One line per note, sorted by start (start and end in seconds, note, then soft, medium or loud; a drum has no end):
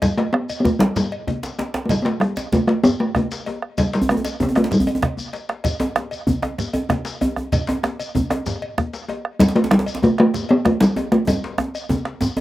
0.02 0.17 G3 medium
0.02 bombo low medium
0.02 cowbell medium
0.02 djembe slap soft
0.02 high conga medium
0.02 djembe bass medium
0.02 low conga medium
0.02 shekere medium
0.17 0.25 A3 medium
0.17 cowbell medium
0.17 djembe slap medium
0.33 0.60 B3 medium
0.33 bombo rim medium
0.49 cowbell soft
0.49 high conga soft
0.49 shekere soft
0.60 0.66 B3 medium
0.65 0.79 A3 medium
0.65 bombo low loud
0.65 high conga medium
0.65 djembe bass medium
0.65 shekere soft
0.79 0.87 G3 medium
0.79 bombo rim medium
0.79 cowbell soft
0.79 djembe slap loud
0.79 djembe slap medium
0.96 1.71 G3 medium
0.96 bombo rim soft
0.96 djembe tone medium
0.96 low conga medium
0.96 shekere medium
1.12 cowbell soft
1.12 high conga soft
1.27 bombo low medium
1.27 cowbell soft
1.27 high conga medium
1.27 djembe bass medium
1.43 djembe slap medium
1.43 shekere soft
1.59 cowbell soft
1.59 djembe slap medium
1.59 djembe tone medium
1.59 high conga soft
1.74 bombo rim medium
1.74 djembe slap loud
1.85 1.93 A3 medium
1.85 high conga medium
1.85 low conga medium
1.90 2.02 G3 medium
1.90 bombo low medium
1.90 cowbell medium
1.90 djembe slap soft
1.90 djembe bass medium
1.90 shekere medium
2.02 2.21 A3 medium
2.02 2.07 B3 medium
2.02 bombo rim soft
2.02 cowbell soft
2.02 djembe slap medium
2.20 2.55 G3 medium
2.20 bombo rim medium
2.20 djembe tone medium
2.36 cowbell soft
2.36 djembe slap medium
2.36 high conga soft
2.36 shekere soft
2.52 2.67 A3 medium
2.52 bombo low medium
2.52 djembe slap medium
2.52 high conga medium
2.52 djembe bass medium
2.52 shekere soft
2.67 2.82 A3 medium
2.67 bombo rim medium
2.67 cowbell soft
2.67 djembe slap medium
2.84 3.02 B3 loud
2.84 bombo rim soft
2.84 djembe tone medium
2.84 low conga medium
2.84 shekere medium
3.00 3.15 A3 medium
3.00 high conga soft
3.15 3.81 A3 medium
3.15 bombo rim medium
3.15 bombo low medium
3.15 cowbell soft
3.15 high conga medium
3.15 djembe bass medium
3.31 djembe slap medium
3.31 shekere soft
3.46 cowbell soft
3.46 djembe tone medium
3.46 high conga soft
3.62 bombo rim medium
3.78 3.94 G3 medium
3.78 bombo low medium
3.78 cowbell medium
3.78 djembe slap soft
3.78 high conga medium
3.78 djembe bass medium
3.78 low conga medium
3.78 shekere medium
3.93 4.12 G3 medium
3.93 bombo rim soft
3.93 cowbell soft
3.93 djembe slap medium
3.93 shekere soft
4.02 djembe bass medium
4.09 4.41 A3 medium
4.09 bombo rim medium
4.09 djembe slap soft
4.09 djembe tone medium
4.17 djembe tone medium
4.25 cowbell soft
4.25 djembe slap medium
4.25 shekere soft
4.40 4.59 B3 medium
4.40 bombo low loud
4.40 djembe slap soft
4.40 high conga medium
4.40 djembe bass medium
4.49 djembe tone medium
4.55 4.75 A3 medium
4.55 bombo rim medium
4.55 cowbell soft
4.55 djembe slap medium
4.55 djembe tone medium
4.64 djembe slap medium
4.71 5.51 G3 medium
4.71 bombo rim soft
4.71 djembe tone medium
4.71 low conga medium
4.71 shekere medium
4.80 djembe bass medium
4.87 cowbell soft
4.87 djembe tone medium
4.87 high conga soft
4.95 djembe tone medium
5.01 bombo rim medium
5.01 bombo low medium
5.01 cowbell soft
5.01 djembe slap medium
5.01 high conga medium
5.01 djembe bass soft
5.17 bombo rim soft
5.17 djembe bass soft
5.17 shekere soft
5.33 cowbell soft
5.33 djembe slap soft
5.33 high conga soft
5.33 shekere soft
5.49 bombo rim medium
5.49 djembe slap medium
5.64 bombo low loud
5.64 cowbell medium
5.64 djembe slap soft
5.64 high conga medium
5.64 djembe bass medium
5.64 low conga medium
5.64 shekere medium
5.80 bombo rim soft
5.80 cowbell soft
5.80 djembe slap medium
5.80 djembe tone loud
5.96 bombo rim loud
5.96 djembe slap medium
5.96 djembe tone medium
6.11 cowbell soft
6.11 high conga soft
6.11 shekere soft
6.27 bombo low loud
6.27 high conga medium
6.27 djembe bass medium
6.27 shekere soft
6.42 bombo rim medium
6.42 cowbell soft
6.42 djembe slap medium
6.42 djembe tone medium
6.58 bombo rim soft
6.58 djembe tone medium
6.58 low conga medium
6.58 shekere medium
6.73 cowbell soft
6.73 djembe tone medium
6.73 high conga soft
6.89 bombo rim medium
6.89 bombo low medium
6.89 cowbell soft
6.89 djembe slap medium
6.89 high conga medium
6.89 djembe bass medium
7.05 djembe slap medium
7.05 shekere soft
7.21 cowbell soft
7.21 djembe tone medium
7.21 high conga soft
7.21 djembe bass medium
7.36 bombo rim medium
7.36 djembe tone medium
7.52 bombo low medium
7.52 cowbell medium
7.52 djembe slap soft
7.52 high conga medium
7.52 djembe bass medium
7.52 low conga medium
7.52 shekere medium
7.67 bombo rim soft
7.67 cowbell medium
7.67 djembe slap medium
7.67 djembe tone loud
7.83 bombo rim medium
7.83 djembe slap medium
7.83 djembe tone medium
8.00 cowbell soft
8.00 high conga soft
8.00 shekere soft
8.15 bombo low loud
8.15 high conga medium
8.15 djembe bass medium
8.15 shekere soft
8.30 bombo rim medium
8.30 cowbell soft
8.30 djembe slap medium
8.30 djembe tone medium
8.46 bombo rim soft
8.46 djembe tone medium
8.46 low conga medium
8.46 shekere medium
8.62 cowbell medium
8.62 high conga soft
8.78 bombo rim medium
8.78 bombo low medium
8.78 high conga medium
8.78 djembe bass medium
8.93 djembe slap soft
8.93 shekere soft
9.08 cowbell soft
9.08 djembe tone medium
9.08 high conga soft
9.25 bombo rim medium
9.39 9.57 G3 medium
9.39 bombo low medium
9.39 cowbell medium
9.39 djembe slap soft
9.39 djembe slap medium
9.39 high conga medium
9.39 djembe bass medium
9.39 low conga medium
9.39 shekere medium
9.48 djembe slap medium
9.55 9.73 A3 medium
9.55 bombo rim soft
9.55 cowbell medium
9.55 djembe slap medium
9.64 djembe slap medium
9.71 10.05 G3 medium
9.71 bombo rim loud
9.71 djembe slap medium
9.71 djembe tone medium
9.79 djembe slap medium
9.86 cowbell soft
9.86 high conga soft
9.86 shekere soft
9.95 djembe slap medium
10.03 10.19 A3 medium
10.03 bombo low medium
10.03 high conga medium
10.03 djembe bass medium
10.03 shekere soft
10.18 10.52 A3 loud
10.18 bombo rim medium
10.18 cowbell soft
10.18 djembe slap medium
10.34 bombo rim soft
10.34 djembe tone medium
10.34 low conga medium
10.34 shekere medium
10.49 10.67 B3 medium
10.49 cowbell medium
10.49 high conga soft
10.65 10.82 A3 medium
10.65 bombo rim medium
10.65 bombo low medium
10.65 cowbell soft
10.65 high conga medium
10.65 djembe bass medium
10.80 11.13 G3 medium
10.80 djembe slap loud
10.80 djembe slap medium
10.80 shekere soft
10.96 cowbell soft
10.96 djembe tone medium
10.96 high conga soft
11.12 11.27 A3 medium
11.12 bombo rim medium
11.12 djembe slap medium
11.27 12.41 G3 medium
11.27 bombo rim soft
11.27 bombo low medium
11.27 cowbell medium
11.27 djembe slap soft
11.27 high conga medium
11.27 djembe tone loud
11.27 low conga medium
11.27 djembe bass medium
11.27 shekere soft
11.44 djembe slap medium
11.58 bombo rim medium
11.58 djembe slap soft
11.58 djembe tone loud
11.58 djembe tone medium
11.75 cowbell soft
11.75 shekere soft
11.89 bombo low medium
11.89 djembe tone medium
11.89 high conga medium
11.89 djembe bass medium
11.89 shekere soft
12.05 bombo rim medium
12.05 djembe slap medium
12.21 bombo rim soft
12.21 djembe slap soft
12.21 djembe tone medium
12.21 high conga soft
12.21 low conga medium
12.21 shekere medium
12.37 cowbell soft
12.37 djembe tone loud